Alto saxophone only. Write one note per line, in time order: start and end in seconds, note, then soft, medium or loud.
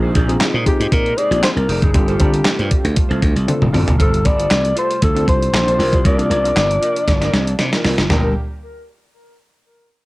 0.68 0.94 G4 medium
0.93 1.20 A#4 loud
1.18 1.44 D5 loud
1.44 1.50 C5 loud
1.57 1.84 A#4 medium
1.83 1.97 G#4 medium
1.95 2.98 G4 medium
4.01 4.28 A4 loud
4.27 4.77 D5 loud
4.79 5.02 C5 loud
5.04 5.27 A4 loud
5.29 5.52 C5 loud
5.55 6.02 C5 loud
6.07 7.81 D5 loud
8.11 8.34 A#4 medium